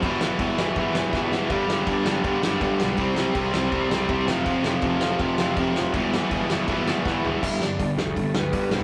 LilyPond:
<<
  \new Staff \with { instrumentName = "Lead electric guitar" } { \time 4/4 \key g \mixolydian \tempo 4 = 162 r1 | r1 | r1 | r1 |
r1 | <e' e''>8 <d' d''>8 <d' d''>8 <a a'>4 <b b'>4 <c' c''>8 | }
  \new Staff \with { instrumentName = "Distorted electric guitar" } { \clef bass \time 4/4 \key g \mixolydian <e, b, e>2 <b, e>2 | <g, d g>2 <g, d g>2 | <c g c'>2 <c g c'>4. <f, c f>8~ | <f, c f>4. <c f>2 r8 |
<e, b, e>2 <b, e>2 | r1 | }
  \new Staff \with { instrumentName = "Distorted electric guitar" } { \clef bass \time 4/4 \key g \mixolydian <e, b, e>8 <e, b, e>8 <e, b, e>8 <e, b, e>8 <e, b, e>8 <e, b, e>8 <e, b, e>8 <e, b, e>8 | <g, d g>8 <g, d g>8 <g, d g>8 <g, d g>8 <g, d g>8 <g, d g>8 <g, d g>8 <g, d g>8 | <c g c'>8 <c g c'>8 <c g c'>8 <c g c'>8 <c g c'>8 <c g c'>8 <c g c'>8 <f, c f>8 | <f, c f>8 <f, c f>8 <f, c f>8 <f, c f>8 <f, c f>8 <f, c f>8 <f, c f>8 <f, c f>8 |
<e, b, e>8 <e, b, e>8 <e, b, e>8 <e, b, e>8 <e, b, e>8 <e, b, e>8 <e, b, e>8 <e, b, e>8 | <g, d g>8 <g, d>8 <g, d>8 <g, d>8 <g, d>8 <g, d>8 <g, d g>8 <g, d g>8 | }
  \new Staff \with { instrumentName = "Distorted electric guitar" } { \clef bass \time 4/4 \key g \mixolydian <e, b, e>8 <e, b, e>8 <e, b, e>8 <e, b, e>8 <e, b, e>8 <e, b, e>8 <e, b, e>8 <e, b, e>8 | <g, d g>8 <g, d g>8 <g, d g>8 <g, d g>8 <g, d g>8 <g, d g>8 <g, d g>8 <g, d g>8 | <c g c'>8 <c g c'>8 <c g c'>8 <c g c'>8 <c g c'>8 <c g c'>8 <c g c'>8 <f, c f>8 | <f, c f>8 <f, c f>8 <f, c f>8 <f, c f>8 <f, c f>8 <f, c f>8 <f, c f>8 <f, c f>8 |
<e, b, e>8 <e, b, e>8 <e, b, e>8 <e, b, e>8 <e, b, e>8 <e, b, e>8 <e, b, e>8 <e, b, e>8 | r1 | }
  \new Staff \with { instrumentName = "Picked electric bass" } { \clef bass \time 4/4 \key g \mixolydian g,,4 g,,8 g,,8 g,,8 g,,8 g,,8 g,,8 | g,,8 g,,8 g,,8 g,,8 g,,8 g,,8 g,,8 b,,8 | c,4 c,8 c,8 c,8 c,8 c,8 f,,8 | f,,8 f,,8 f,,8 f,,8 f,,8 f,,8 f,,8 f,,8 |
g,,4 g,,8 g,,8 g,,8 g,,8 g,,8 g,,8 | g,,8 g,,8 g,,8 d,8 g,,8 d,8 g,,8 b,,8 | }
  \new DrumStaff \with { instrumentName = "Drums" } \drummode { \time 4/4 <cymc bd>8 sn8 <cymc bd>8 sn8 <cymc bd>8 sn8 <bd sn>8 sn8 | <cymc bd>8 sn8 <cymc bd>8 sn8 <cymc bd>8 sn8 <cymc bd>8 sn8 | <cymc bd>8 sn8 <cymc bd>8 sn8 <cymc bd>8 sn8 <cymc bd>8 sn8 | <cymc bd>8 sn8 <cymc bd>8 sn8 <cymc bd>8 sn8 <cymc bd>8 sn8 |
<cymc bd>8 sn8 <cymc bd>8 sn8 <cymc bd>8 sn8 <bd sn>8 tomfh8 | <cymc bd>8 sn8 <hho bd>8 sn16 bd16 <hho bd>8 sn8 <hho bd>8 sn8 | }
>>